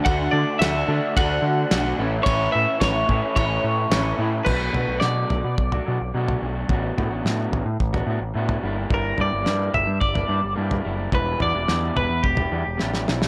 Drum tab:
CC |----------------|----------------|x---------------|----------------|
RD |b---b---b---b---|b---b---b---b---|----------------|----------------|
SD |----o-------o---|----o-------o---|----o-----------|----o-----------|
FT |----------------|----------------|o-o---o--o---o--|o-o---o--o---o--|
BD |o-------o-------|o---o-o-o-------|o-------o-------|o-------o-------|

CC |----------------|----------------|
RD |----------------|----------------|
SD |----o-----------|----o-------oooo|
FT |o-o---o--o---o--|o-o---o--o------|
BD |o-------o-------|o-------o-------|